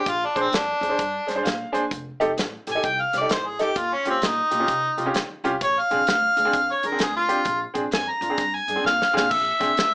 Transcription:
Already playing: G4
0.06 A#1 F4, kick, closed hi-hat
0.25 D4
0.35 A#1 D4 G#4 C5, kick, closed hi-hat
0.41 C4
0.52 F2 D4, snare, closed hi-hat
0.81 F2 G#4 C5, closed hi-hat
0.89 D4 G#4 C5
0.99 G2, kick, closed hi-hat
1.27 G2 G#4 C5, snare, closed hi-hat
1.35 D4 G#4 C5
1.43 A#2 F5, closed hi-hat
1.47 snare
1.72 D#2 D4 G#4 C5 G#5, closed hi-hat
1.91 F1, kick, closed hi-hat
2.20 F1 D#4 G4 A4, closed hi-hat
2.37 A1, snare, closed hi-hat
2.67 A1 G4 A4, snare, closed hi-hat
2.72 D#4 G4 G#5
2.76 A4
2.83 C2 G5, kick, closed hi-hat
3.01 F5
3.13 C2 G4 C5, snare, closed hi-hat
3.17 D#4 G4 D5
3.22 A4
3.29 A1 C5, snare, closed hi-hat
3.46 G#4
3.59 D#4 G4 A4, snare, closed hi-hat
3.76 D#2 F4, kick, closed hi-hat
3.94 C#4
4.05 D#2 C#4 F4 G4, closed hi-hat
4.10 C4
4.22 A#2 D#4, snare, closed hi-hat
4.51 A#2 F4 G4, closed hi-hat
4.60 C#4 F4 G4
4.68 C3, kick, closed hi-hat
4.97 C3 F4 G4, closed hi-hat
5.06 C#4 F4 G4
5.14 D#3, snare, closed hi-hat
5.44 C2 C#4 F4 G4, closed hi-hat
5.61 A#1 C#5, kick, closed hi-hat
5.79 F5
5.91 A#1 C4 D4 G#4, closed hi-hat
6.07 D2, snare, closed hi-hat
6.36 D2 D4 G#4, closed hi-hat
6.45 C4 D4 G#4
6.53 F2, kick, closed hi-hat
6.72 C#5
6.83 F2 D4 G#4 A#4, closed hi-hat
6.92 C4 D4 G#4
6.99 D2 G#4, snare, closed hi-hat
7.16 F4
7.28 C4 D4 G4, closed hi-hat
7.45 A#1, kick, closed hi-hat
7.74 A#1 C4 D4 G#4, kick, closed hi-hat
7.91 F2 G#5, snare, closed hi-hat
8.10 A#5
8.21 F2 D4 F4, closed hi-hat
8.29 C4 D4 G#4
8.38 G2, kick, snare, closed hi-hat
8.56 G#5
8.68 G2 D4 G#4, closed hi-hat
8.76 C4 D4 G#4
8.84 A#2 F5, snare
9.02 snare
9.13 A#2 C4 D4 G#4 F5, snare
9.31 A#1 E5, kick, crash
9.60 A#1 C4 D4 G#4, kick, snare, closed hi-hat
9.77 D2, snare, closed hi-hat

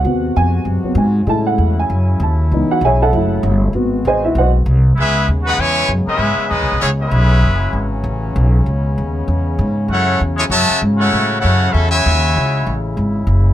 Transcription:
Already playing: F#5
0.04 D#2 C3 G#3 B3 C4 F#4
0.36 F2 G#5
0.65 F#2
0.83 F#3 B3 C4, muted upright bass stroke
0.95 G#2 G#5
1.26 A2 C#3 F#3 G#3 A3 C#4 E4 A5
1.47 F#5
1.58 E2
1.79 G#5
1.90 F#2
2.20 D#2 A5
2.51 C#2 C#3 E3 G#3 B3 D#4
2.69 F#4 F#5, muted upright bass stroke
2.81 B1 E5 G#5
2.85 G#4 C#5
3.02 A4 E5 F#5 A5
3.12 F#1 F#3 A3 E4
3.43 G1
3.73 G#1 G#3 B3 C4 F#4
4.05 A1 G#4 C5 D#5 G#5
4.25 E4 E5
4.35 B1 F#4 C5 F#5
4.39 D#5
4.66 C2
4.96 C#2 C#3 G#3 B3 C#4 E4
5.00 C#4 G#4 B4 E5
5.28 D#2
5.43 D#4 F#4 G#4 B4 F#5
5.56 E2 B2 E3 G#3 E4 B4 C#5 G#5
5.88 F#2
6.06 G#3 B3 C#4 E4 G#4 B4 E5, muted upright bass stroke
6.18 G#2
6.38 muted upright bass stroke
6.48 E2 G#3 B3 C#4 D#4 G#4 B4 D#5
6.62 C#2
6.72 B1
6.79 C#2 E3 G#3 B3 C#4 E4 G#4 C#5
6.99 G#3 B3 C#4 E4 G#4 B4 E5
7.11 B1
7.43 F#1 C#3 E3 F#3
7.73 G#1
8.04 A1
8.36 B1
8.66 C#2 G#3 B3
8.98 D#2
9.28 E2
9.59 G#2
9.88 F#2 F#3 A3 C#4 F#4 C#5 F#5
9.92 E4 A4
10.20 E2
10.36 G#3 E4 A4 C#5 G#5
10.50 F#2 C#3 E3 A3 F#4 C#5 E5 A5
10.70 muted upright bass stroke
10.82 G#2
10.97 A3 C#4 E4 F#4 A4 C#5 F#5
11.13 A2
11.40 F#2 A3 C#4 E4 F#4 A4 C#5 F#5
11.71 E2 A3 C#4 E4 F#4 A4 E5
11.90 C#3 G#3 E4 F#4 C#5 E5 G#5
12.06 D#2
12.36 C#2 G#3 E4
12.66 A1
12.97 G#1
13.27 F#1

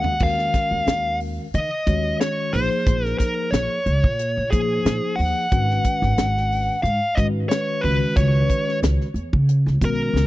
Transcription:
Already playing: D#2 D#3 G#3 C#4 F#4 A#4 F5 F#5
0.04 floor tom
0.20 D#2 D#3 G#3 C#4 F#4 A#4 F5, kick, crash
0.39 snare
0.54 kick, snare, closed hi-hat
0.71 D#2
0.87 D#2, snare, closed hi-hat
1.20 open hi-hat
1.54 D#3 D#5, closed hi-hat
1.87 D#2 D#3 G#3 C#4 F#4 C#5, kick, closed hi-hat
2.20 C#5, snare, closed hi-hat
2.53 A#1 F3 A#3 D#4 G#4 C5, open hi-hat
2.87 A#1, kick, closed hi-hat
3.05 A#4, snare
3.18 A#4, kick, snare, closed hi-hat
3.51 A#1 C#5, snare, closed hi-hat
3.86 C#2, closed hi-hat
4.04 A#2, kick
4.19 closed hi-hat
4.37 A#1
4.50 A#2 F3 A#3 D#4 G#4 C5, kick, closed hi-hat
4.85 A#2, snare, closed hi-hat
5.16 D#2 F#5, open hi-hat
5.52 G#1 D#3 G#3 C#4 F#4 B4, kick, closed hi-hat
5.71 snare
5.84 kick, closed hi-hat
6.02 G#1, snare
6.18 G#1, snare, closed hi-hat
6.37 snare
6.52 open hi-hat
6.83 G#2 F5, closed hi-hat
7.15 G#2 D#3 G#3 C#4 F#4 B4 D#5, kick, closed hi-hat
7.49 C#5, snare, closed hi-hat
7.81 C#2 D#3 G#3 C#4 F#4 B4, open hi-hat
8.16 C#2 C#5, kick, closed hi-hat
8.50 kick, closed hi-hat
8.69 snare
8.83 C#2, snare, closed hi-hat
9.01 snare
9.14 E2, closed hi-hat
9.33 C#3, kick
9.49 closed hi-hat
9.66 C#2, snare
9.81 B1 D#3 G#3 B3 C#4 F#4 A#4, kick, closed hi-hat
10.14 C#2, snare

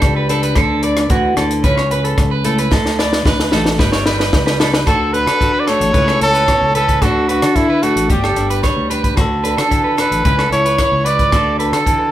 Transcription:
Already playing: G3 D4 G4 A4 B4
0.02 C#2, kick, cross-stick, closed hi-hat
0.16 B4
0.29 D4 A4 B4, closed hi-hat
0.43 B4, closed hi-hat
0.55 D2 D3 D4 A4, kick, cross-stick, closed hi-hat
0.83 B4 D5, closed hi-hat
0.97 cross-stick, closed hi-hat
1.10 D2 E3 F#4, kick, closed hi-hat
1.37 D2 D3 A4, cross-stick, closed hi-hat
1.51 closed hi-hat
1.64 C#2 C#3 C#4 B4, kick, closed hi-hat
1.77 C#5, cross-stick
1.91 B4, closed hi-hat
2.04 A4, closed hi-hat
2.18 C#2, kick, cross-stick, closed hi-hat
2.31 B4
2.44 A3 E4 A4, closed hi-hat
2.58 B4, closed hi-hat
2.71 D2 D3 A4, muted nylon-string guitar stroke, kick, snare
2.86 snare
2.99 B4 D5, snare
3.13 snare
3.25 D2 B4, kick, snare
3.40 snare
3.51 A1 A3 F#4 A4, snare
3.66 snare
3.78 G1 G3 G4 B4, kick, snare
3.92 C#5, snare
4.06 B4, snare
4.19 B4, snare
4.33 C#2, kick, snare
4.46 B4, snare
4.60 D4 A4 B4, snare
4.73 B4, snare
4.87 D2 D3 F#4 A4, kick, cross-stick, closed hi-hat
5.13 D4 B4, closed hi-hat
5.27 D3 A4, cross-stick, closed hi-hat
5.41 F#4, kick, closed hi-hat
5.54 B4
5.60 D5
5.67 A3 D4 A4 C#5, cross-stick, closed hi-hat
5.81 A1, closed hi-hat
5.93 C#2 C#3 A3 C#4 E4 B4, kick, closed hi-hat
6.07 A4, cross-stick
6.21 C#2 C#4 A4, closed hi-hat
6.34 B4, closed hi-hat
6.47 B2 C#5, kick, cross-stick, closed hi-hat
6.61 C#2
6.75 C#3 A4 B4, closed hi-hat
6.88 B4, kick, closed hi-hat
7.02 D2 D3 D4 F#4 A4, kick, cross-stick, closed hi-hat
7.29 D4 F#4 B4, closed hi-hat
7.42 D3 A4, cross-stick, closed hi-hat
7.56 D4 E4, kick, closed hi-hat
7.70 B4
7.82 A3 D4 F#4 A4, closed hi-hat
7.96 A1, closed hi-hat
8.09 G1 G3 D4 G4, kick, closed hi-hat
8.23 A4, cross-stick
8.36 G1 D4, closed hi-hat
8.50 B4, closed hi-hat
8.63 B4 C#5, kick, cross-stick, closed hi-hat
8.77 D2
8.90 D4 G4 B4, closed hi-hat
9.04 B4, kick, closed hi-hat
9.17 D2 D3 F#4 A4, muted clean electric guitar stroke, kick, cross-stick, closed hi-hat
9.44 D4 A4 B4, closed hi-hat
9.57 D3 A4, cross-stick, closed hi-hat
9.71 E3, kick, closed hi-hat
9.84 B4
9.97 D3 A4 B4, cross-stick, closed hi-hat
10.11 A1, closed hi-hat
10.25 C#2 C#3 E4 B4, kick, closed hi-hat
10.38 A4, cross-stick
10.51 C#2 E4 C#5, closed hi-hat
10.66 B4, closed hi-hat
10.78 B4 C#5, kick, cross-stick, closed hi-hat
10.92 C#2
11.05 E4 B4 D5, closed hi-hat
11.19 B4, kick, closed hi-hat
11.32 D2 D3 F#4 A4, kick, cross-stick, closed hi-hat
11.59 D4 A4 B4, closed hi-hat
11.72 D3 A4, cross-stick, closed hi-hat
11.86 E3, kick, closed hi-hat
12.00 muted clean electric guitar stroke

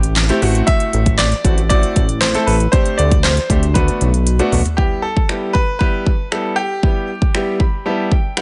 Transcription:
Already playing: A1 G4
0.03 closed hi-hat
0.16 snare, clap, closed hi-hat
0.29 A3 C4 E4 G4, closed hi-hat
0.42 A1 A3 C4 E4 F#4, open hi-hat
0.55 closed hi-hat
0.67 E5, kick, closed hi-hat
0.80 closed hi-hat
0.93 A1, closed hi-hat
1.06 kick, closed hi-hat
1.18 D5, snare, clap, closed hi-hat
1.32 closed hi-hat
1.45 A1 A3 C4 E4 F#4, kick, closed hi-hat
1.58 closed hi-hat
1.69 A3 C4 E4 F#4 D5, kick, closed hi-hat
1.83 closed hi-hat
1.96 A1, kick, closed hi-hat
2.09 closed hi-hat
2.21 C5, snare, clap, closed hi-hat
2.34 A3 C4 E4 A4, closed hi-hat
2.47 A1 B4, open hi-hat
2.60 closed hi-hat
2.72 A3 C4 D4 G4 C5, kick, closed hi-hat
2.86 closed hi-hat
2.98 D2 D5, closed hi-hat
3.11 kick, closed hi-hat
3.23 C5, snare, clap, closed hi-hat
3.37 closed hi-hat
3.50 D2 A3 C4 D4 G4, kick, closed hi-hat
3.63 closed hi-hat
3.74 A3 B3 D4 F#4 B4, kick, closed hi-hat, high tom
3.88 closed hi-hat
4.01 B1, closed hi-hat, mid tom
4.14 closed hi-hat
4.27 closed hi-hat
4.39 A3 B3 D4 F#4, closed hi-hat
4.52 B1, floor tom, open hi-hat
4.65 closed hi-hat, floor tom
4.77 G3 B3 E4 G4, kick
5.02 A4
5.17 kick
5.29 G3 B3 E4 G4, finger snap
5.53 B4, kick
5.79 G3 B3 E4 G4 B4, kick
6.07 kick
6.32 G3 B3 E4 A4, finger snap
6.56 G4
6.83 G3 B3 E4 G4, kick
7.22 kick
7.34 G3 B3 E4 G4, finger snap
7.60 B5, kick
7.86 G3 B3 E4 G4 A5
8.12 G5, kick
8.37 G3 B3 E4 G4 F#5, finger snap

